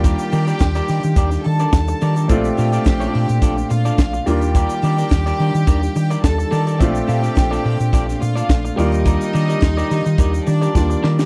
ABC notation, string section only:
X:1
M:4/4
L:1/8
Q:1/4=106
K:Eblyd
V:1 name="String section"
[Gg]4- [Gg] [Aa]3 | [Gg]4- [Gg] [Ff]2 [Gg]- | [Gg]6 [Aa]2 | [Gg]4- [Gg] [Ff]2 [Ee]- |
[Ee]4- [Ee] [Dd]3 |]